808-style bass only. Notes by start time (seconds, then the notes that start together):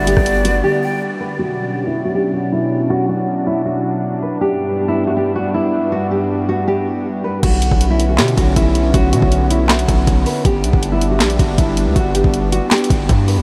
Already playing: G1
0.17 G1
7.43 B1
7.71 B1
8.19 B2
8.37 B1
8.56 B1
8.94 B1
9.13 B2
9.22 B1
9.88 B1
10.07 B1
10.45 G1
10.64 B1
10.73 G1
11.20 A#1
11.39 G1
11.58 G1
11.86 D2
11.96 G1
12.24 G1
12.90 G1
13.09 G2
13.37 D2